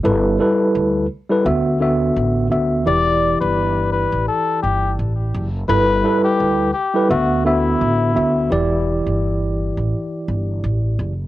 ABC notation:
X:1
M:4/4
L:1/16
Q:"Swing 16ths" 1/4=85
K:Em
V:1 name="Muted trumpet"
z16 | d3 B3 B2 A2 G2 z4 | B3 G3 G2 F2 E6 | z16 |]
V:2 name="Tine electric piano"
[G,EAB]2 [G,EAB]4 z [G,EAB] [D,B,Fe]2 [D,B,Fe]4 [D,B,Fe]2 | [E,EGd]12- [E,EGd]3 z | [G,EAB]2 [G,EAB]4 z [G,EAB] [D,B,Fe]2 [D,B,Fe]4 [D,B,Fe]2 | [E,EGd]12- [E,EGd]3 z |]
V:3 name="Upright bass" clef=bass
G,,,2 z2 D,,2 z2 D,,4 A,,,2 D,,2 | E,,,3 G,,,4 A,,, z2 G,,,2 A,,,2 F,,,2 | G,,,2 z2 D,,2 z2 D,,4 A,,,2 D,,2 | E,,,3 G,,,4 A,,, z2 G,,,2 A,,,2 F,,,2 |]